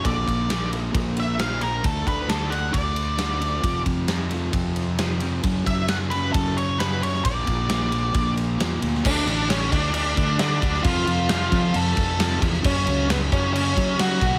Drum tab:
CC |----------------|----------------|----------------|----------------|
RD |x-x-x-x-x-x-x-x-|x-x-x-x-x-x-x-x-|x-x-x-x-x-x-x-x-|x-x-x-x-x-x-x-x-|
SD |----o-------o---|----o-------o---|----o-------o---|----o-------o--o|
BD |o-o-----o-------|o-o-----o-------|o-o-----o-------|o-o-----o-------|

CC |----------------|x-x-x-x-x-x-x-x-|x-x-x-x-x-x-x-x-|x-x-x-x-x-x-x-x-|
RD |x-x-x-x-x-x-x-x-|----------------|----------------|----------------|
SD |----o-------o--o|----o-------o--o|----o-------o--o|----o-------o---|
BD |o-o-----o-------|o-----o---o---o-|o-----o---o---o-|o-----o---o---o-|